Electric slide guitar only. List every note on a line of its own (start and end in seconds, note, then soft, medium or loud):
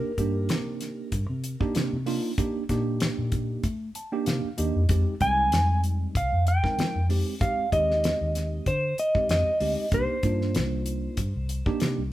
0.00 1.72 A#4 medium
5.22 5.80 G#5 loud
6.17 6.45 F5 medium
6.48 7.06 G5 loud
7.41 7.72 F5 loud
7.73 8.70 D#5 loud
8.68 8.99 C5 medium
8.99 9.30 D#5 medium
9.31 9.95 D#5 loud
9.94 11.78 C5 medium